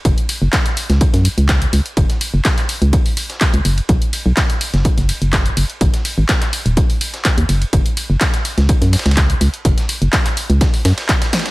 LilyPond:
<<
  \new Staff \with { instrumentName = "FM bass" } { \clef bass \time 4/4 \key gis \phrygian \tempo 4 = 125 fis,,16 r8 fis,,16 r8. cis,16 r16 fis,16 r16 cis,8 r16 cis,16 r16 | fis,,16 r8 fis,,16 r8. cis,16 r4 r16 cis,16 fis,,16 r16 | b,,16 r8 b,,16 r8. fis,,16 r16 fis,,16 r16 fis,,8 r16 fis,,16 r16 | gis,,16 r8 gis,,16 r8. dis,,16 r4 r16 dis,16 fis,,16 r16 |
fis,,16 r8 fis,,16 r8. cis,16 r16 fis,16 r16 cis,8 r16 cis,16 r16 | fis,,16 r8 fis,,16 r8. cis,16 r8 fis,16 r4 r16 | }
  \new DrumStaff \with { instrumentName = "Drums" } \drummode { \time 4/4 <hh bd cymr>16 hh16 <hho cymr>8 <hc hh bd cymr sn>16 <hh sn>16 <hho cymr>16 <hh sn>16 <hh bd cymr>16 <hh sn>16 <hho cymr>16 hh16 <hc hh bd cymr sn>16 hh16 <hho cymr>16 hh16 | <hh bd cymr>16 <hh sn>16 <hho cymr>8 <hc hh bd cymr sn>16 <hc hh sn>16 <hho cymr>16 hh16 <hh bd cymr>16 hho16 <hho cymr>16 <hh sn>16 <hc hh bd cymr sn>16 hh16 <hho cymr>16 <hh cymr>16 | <hh bd cymr>16 hh16 <hho cymr>8 <hc hh bd cymr sn>16 <hh sn>16 <hho cymr>16 <hh sn>16 <hh bd cymr>16 <hh sn>16 <hho cymr>16 hh16 <hc hh bd cymr sn>16 hh16 <hho cymr>16 hh16 | <hh bd cymr>16 <hh sn>16 <hho cymr>8 <hc hh bd cymr sn>16 <hc hh sn>16 <hho cymr>16 hh16 <hh bd cymr>16 hho16 <hho cymr>16 <hh sn>16 <hc hh bd cymr sn>16 hh16 <hho cymr>16 <hh cymr>16 |
<hh bd cymr>16 hh16 <hho cymr>8 <hc hh bd cymr sn>16 <hh sn>16 <hho cymr>16 <hh sn>16 <hh bd cymr>16 <hh sn>16 <hho cymr sn>32 <cymr sn>32 <hh cymr sn>32 <cymr sn>32 <hc hh bd cymr sn>16 hh16 <hho cymr>16 hh16 | <hh bd cymr>16 <hh sn>16 <hho cymr>16 hh16 <hc hh bd cymr sn>16 <hc hh sn>16 <hho cymr>16 hh16 <hh bd cymr sn>16 <hho sn>16 <hho cymr sn>16 <hh cymr sn>16 <hc hh bd cymr sn>16 <hh cymr sn>16 <hho cymr sn>32 <cymr sn>32 <hh cymr sn>16 | }
>>